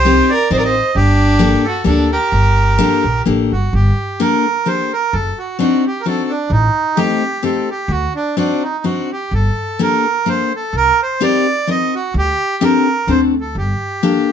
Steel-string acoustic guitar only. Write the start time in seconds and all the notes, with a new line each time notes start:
0.05 C4 D#4 G4 A#4
0.51 C4 D#4 G4 A#4
1.39 A#3 D4 G4 A4
1.84 A#3 D4 G4 A4
2.78 A#3 D4 G4 A4
3.25 A#3 D4 G4 A4
4.20 A#3 D4 G4 A4
4.66 A#3 D4 G4 A4
5.59 C4 D4 D#4 F#4
6.06 C4 D4 D#4 F#4
6.97 A3 C4 D#4 G4
7.43 A3 C4 D#4 G4
8.37 C4 D4 D#4 F#4
8.84 C4 D4 D#4 F#4
9.79 A#3 D4 G4 A4
10.26 A#3 D4 G4 A4
11.20 C4 D#4 G4 A#4
11.67 C4 D#4 G4 A#4
12.61 C4 D4 G4 A4
13.08 C4 D4 F#4 A4
14.03 A#3 D4 G4 A4